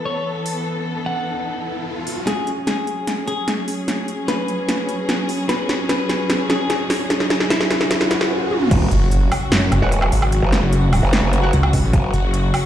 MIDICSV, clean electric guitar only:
0, 0, Header, 1, 2, 480
1, 0, Start_track
1, 0, Key_signature, 3, "minor"
1, 0, Tempo, 402685
1, 786, Time_signature, 4, 2, 24, 8
1, 15087, End_track
2, 0, Start_track
2, 0, Title_t, "Clean electric guitar"
2, 0, Program_c, 0, 27
2, 65, Note_on_c, 0, 73, 84
2, 347, Note_off_c, 0, 73, 0
2, 1266, Note_on_c, 0, 78, 86
2, 2610, Note_off_c, 0, 78, 0
2, 2705, Note_on_c, 0, 68, 93
2, 2986, Note_off_c, 0, 68, 0
2, 3185, Note_on_c, 0, 68, 90
2, 3809, Note_off_c, 0, 68, 0
2, 3905, Note_on_c, 0, 68, 88
2, 4186, Note_off_c, 0, 68, 0
2, 5105, Note_on_c, 0, 71, 96
2, 6449, Note_off_c, 0, 71, 0
2, 6545, Note_on_c, 0, 71, 96
2, 6826, Note_off_c, 0, 71, 0
2, 7025, Note_on_c, 0, 71, 91
2, 7650, Note_off_c, 0, 71, 0
2, 7744, Note_on_c, 0, 68, 89
2, 8026, Note_off_c, 0, 68, 0
2, 8945, Note_on_c, 0, 64, 96
2, 9905, Note_off_c, 0, 64, 0
2, 15087, End_track
0, 0, End_of_file